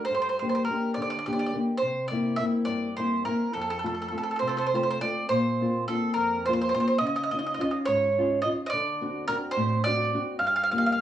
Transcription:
0.05 C5
0.10 G2
0.15 C5
0.22 C5
0.29 C5
0.39 A#3 D4 G4 C5
0.49 C5
0.55 C5
0.65 A#4
0.70 A#3 D4 G4
0.94 D3 D5
1.02 D5
1.10 D5
1.19 D5
1.26 A#3 D4 G4 D5
1.33 D5
1.39 D5
1.46 D5
1.53 A#3 D4 G4
1.78 C5
1.82 C3
2.08 A#3 D5
2.12 C4 E4
2.36 A#3 C4 E5
2.41 E4
2.65 G2 D5
2.96 A#3 C4 E4 C5
3.25 A#3 C4 E4 A#4
3.53 F2 A4
3.61 A4
3.70 A4
3.79 A4
3.83 A3 C4 F4 A4
3.94 A4
4.02 A4
4.08 A3 C4 F4 A4
4.18 A4
4.23 A4
4.31 A4
4.36 A4 C5
4.42 C3
4.47 A4 C5
4.57 A4 C5
4.66 C5
4.73 A3 C4 F4 C5
4.83 C5
4.90 C5
5.01 A3 C4 F4 D5
5.29 A#2 C5
5.61 A#3 C4 F4
5.88 A#3 C4 F4 A4
6.14 F2 A#4
6.45 A#3 C4 F4 C5
6.53 C5
6.61 C5
6.69 C5
6.74 A#3 C4 F4 C5
6.80 C5
6.87 C5
6.98 C#3 D#5
7.07 D#5
7.16 D#5
7.24 D#5
7.32 C#4 D#4 F4 D#5
7.39 D#5
7.47 D#5
7.55 D#5
7.59 C#4 D#4 F4 D#5
7.71 D#5
7.86 G#2 C#5
8.18 C#4 D#4 F4
8.42 C#4 D#4 F4 D#5
8.66 D5 D#5
8.73 D3
9.01 C4 D4 F#4
9.28 C4 D4 F#4 A#4
9.51 C5
9.57 A2
9.84 C4 D4 F#4 D5
10.14 C4 D4 F#4
10.39 G2 F5
10.47 F5
10.56 F5
10.64 F5
10.72 A#3 F4 G4 F5
10.78 F5
10.86 F5
10.92 F5

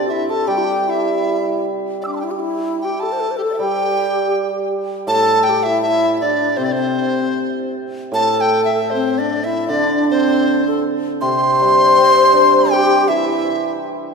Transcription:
Already playing: C3
0.07 E4 G4 E5
0.29 A4 A5
0.47 G3 G4 G5
0.58 E4
0.64 G4
0.88 E4 E5
2.02 D5 E6
2.06 D4 D6
2.13 A5 C6
2.20 E4 G5
2.31 G4
2.39 E4
2.81 G4 G5
3.00 A4 A5
3.12 C5
3.20 A4
3.31 C5
3.37 G4 A4
3.44 A4
3.50 D5
3.54 A4 E5
3.58 G3 G5
3.63 G4
5.07 A2 A5
5.12 A4
5.43 G5
5.49 G4
5.62 E4 G4 E5
5.82 E4 E5
6.17 E4 D5
6.22 D4
6.57 C3 C4 C5
6.64 D5
6.72 C4 C5
8.12 A2 A5
8.16 A4
8.41 G5
8.65 E5
8.90 C4 C5
9.18 D4 D5
9.44 E4 E5
9.68 D3 D4 D5
10.10 C4 C5
10.66 A4
11.20 C3 C5 C6
11.61 G3
11.98 C4
12.33 D4
12.71 G4 G5
13.08 E3 E4 E5

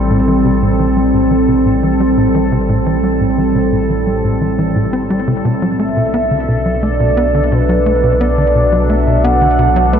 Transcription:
Already playing: A1 A2 G3 C4 A4
0.10 A2
0.28 E3
0.45 C3
0.62 A2
0.79 E3
0.97 G3
1.14 A2
1.31 E3
1.48 C3
1.66 A2
1.83 E3
2.00 G3
2.17 A2
2.35 E3
2.52 C3
2.69 A2
2.86 E3
3.04 G3
3.21 A2
3.38 E3
3.55 C3
3.72 A2
3.90 E3
4.07 G3
4.24 A2
4.41 E3
4.59 E3
4.76 A2
4.93 C4
5.10 G3
5.28 C3
5.45 B1 B2
5.62 F#3
5.79 A3 D4 E5
5.97 B2
6.14 B3
6.31 D3
6.42 F#3
6.48 B2
6.66 F#3
6.83 A3 D5
7.00 B2
7.17 B3
7.35 D3
7.52 B2 B4
7.69 F#3
7.86 A3
8.03 B2
8.21 B3 D5
8.38 D3
8.55 B2
8.72 F#3
8.89 A3 E5
9.07 B2
9.24 B3 F#5
9.42 D3
9.59 B2
9.76 F#3
9.93 A3 B4

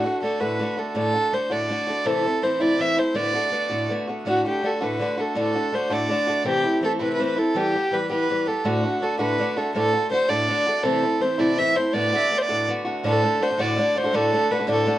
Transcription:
Already playing: F#4
0.04 D3 A3 D4 F#4
0.22 D3 A3 D4 F#4 A4
0.40 D2 A2 D3 A3 D4 F#4 B4
0.59 D3 A3 D4 F#4
0.77 D3 A3 D4 F#4 A4
0.94 D2 A2 D3 A3 D4 F#4 A4
1.14 D3 A3 D4 F#4
1.32 D3 A3 D4 F#4 C5
1.50 D2 A2 D3 A3 D4 F#4 D5
1.69 D3 A3 D4 F#4
1.87 D3 A3 D4 F#4
2.05 C3 E3 A3 C4 E4 A4
2.24 A3 C4 E4
2.42 E3 A3 C4 E4 C5
2.60 C3 E3 A3 C4 E4 D5
2.78 E3 A3 C4 E4 E5
2.97 A3 C4 E4 C5
3.14 D2 A2 D3 A3 B3 F#4 D5
3.34 D3 A3 B3 F#4
3.51 D3 A3 B3 F#4
3.69 D2 A2 D3 A3 B3 F#4
3.89 D3 A3 B3 F#4
4.07 D3 A3 B3 F#4
4.25 D2 A2 D3 A3 D4 F#4
4.45 D3 A3 D4 F#4 G4
4.62 D3 A3 D4 F#4 A4
4.81 D2 A2 D3 A3 D4 F#4 B4
4.99 D3 A3 D4 F#4
5.17 D3 A3 D4 F#4 A4
5.35 D2 A2 D3 A3 D4 F#4 A4
5.55 D3 A3 D4 F#4
5.72 D3 A3 D4 F#4 C5
5.89 D2 A2 D3 A3 D4 F#4 D5
6.09 D3 A3 D4 F#4
6.27 D3 A3 D4 F#4
6.44 C3 E3 A3 C4 E4 G4
6.64 A3 C4 E4
6.81 E3 A3 C4 E4 A4
6.99 C3 E3 A3 C4 E4 B4
7.14 B4
7.18 E3 A3 C4 E4
7.25 B4
7.36 A3 C4 E4 A4
7.55 E3 G3 B3 G4
7.74 G3 B3 G4
7.91 E3 G3 B3 G4 B4
8.10 E3 G3 B3 G4 B4
8.29 E3 G3 B3 G4
8.46 G3 B3 G4 A4
8.64 D2 A2 D3 A3 D4 F#4
8.83 D3 A3 D4 F#4
9.00 D3 A3 D4 F#4 A4
9.19 D2 A2 D3 A3 D4 F#4 B4
9.39 D3 A3 D4 F#4
9.56 D3 A3 D4 F#4 A4
9.74 D2 A2 D3 A3 D4 F#4 A4
9.93 D3 A3 D4 F#4
10.11 D3 A3 D4 F#4 C5
10.29 D2 A2 D3 A3 D4 F#4 D5
10.48 D3 A3 D4 F#4
10.66 D3 A3 D4 F#4
10.83 C3 E3 A3 C4 E4 A4
11.03 A3 C4 E4
11.20 E3 A3 C4 E4 C5
11.38 C3 E3 A3 C4 E4 D5
11.58 E3 A3 C4 E4 E5
11.75 A3 C4 E4 C5
11.93 D2 A2 D3 A3 B3 F#4 D5
12.13 D3 A3 B3 F#4 E5
12.18 D5
12.30 D3 A3 B3 F#4
12.38 C5 D5
12.49 D2 A2 D3 A3 B3 F#4
12.67 D3 A3 B3 F#4
12.85 D3 A3 B3 F#4
13.03 D2 A2 D3 A3 D4 F#4 A4
13.22 D3 A3 D4 F#4
13.40 D3 A3 D4 F#4 C5
13.49 D3 A3 D4 F#4
13.58 D2 A2 D3 A3 D4 F#4 D5
13.77 D3 A3 D4 F#4
13.95 D3 A3 D4 F#4 C5
14.03 D3 A3 D4 F#4
14.13 D2 A2 D3 A3 D4 F#4 A4
14.32 D3 A3 D4 F#4
14.50 D3 A3 D4 F#4 B4
14.59 D3 A3 D4 F#4
14.67 D2 A2 D3 A3 D4 F#4 A4
14.86 D3 A3 D4 F#4

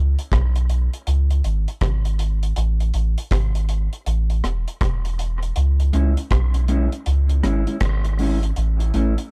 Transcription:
Already playing: C#2
0.19 closed hi-hat
0.32 B1, kick, cross-stick, closed hi-hat
0.56 closed hi-hat
0.69 closed hi-hat
0.93 closed hi-hat
1.07 C#2, closed hi-hat
1.30 closed hi-hat
1.44 G#1, closed hi-hat
1.68 closed hi-hat
1.81 G#1, kick, cross-stick, closed hi-hat
2.05 closed hi-hat
2.19 closed hi-hat
2.43 closed hi-hat
2.56 A1, closed hi-hat
2.80 closed hi-hat
2.94 A1, closed hi-hat
3.18 closed hi-hat
3.31 G#1, kick, cross-stick, closed hi-hat
3.55 closed hi-hat
3.69 closed hi-hat
3.93 closed hi-hat
4.06 A1, closed hi-hat
4.30 closed hi-hat
4.44 E1, cross-stick, closed hi-hat
4.68 closed hi-hat
4.81 E1, kick, cross-stick, closed hi-hat
5.05 closed hi-hat
5.19 closed hi-hat
5.43 closed hi-hat
5.56 C#2, closed hi-hat
5.80 closed hi-hat
5.93 C#2 G#3 C#4 E4, closed hi-hat
6.17 closed hi-hat
6.31 B1, kick, cross-stick, closed hi-hat
6.54 muted clean electric guitar stroke, closed hi-hat
6.68 G#3 C#4 E4, closed hi-hat
6.92 closed hi-hat
7.06 C#2, closed hi-hat
7.29 closed hi-hat
7.43 G#1 G#3 C#4 E4, cross-stick, closed hi-hat
7.67 G#3 C#4 E4, closed hi-hat
7.80 G#1, kick, cross-stick, closed hi-hat
8.05 muted clean electric guitar stroke, closed hi-hat
8.19 G#3 C#4 E4, open hi-hat
8.43 closed hi-hat
8.56 A1, closed hi-hat
8.80 closed hi-hat
8.94 A1 A3 C#4 E4, closed hi-hat
9.18 closed hi-hat

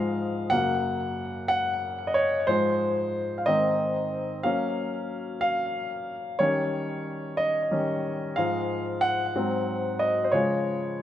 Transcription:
Already playing: G#2 F3 G#3 D#5 F5
0.50 F#2 C#3 A#3 F#5
1.48 F#5
2.07 D#5
2.14 C#5
2.47 G#2 F3 G#3 C5
3.38 F5
3.46 G#2 D#3 C4 D#5
4.43 F#3 A#3 C#4 F5
5.41 F5
6.39 D#3 G3 C#4 C#5
7.37 D#5
7.71 D#3 G3 C#4
8.36 G#2 F3 G#3 F5
9.01 F#5
9.36 G#2 F#3 C4
9.99 D#5
10.24 C5
10.32 C#3 F3 G#3 C#5

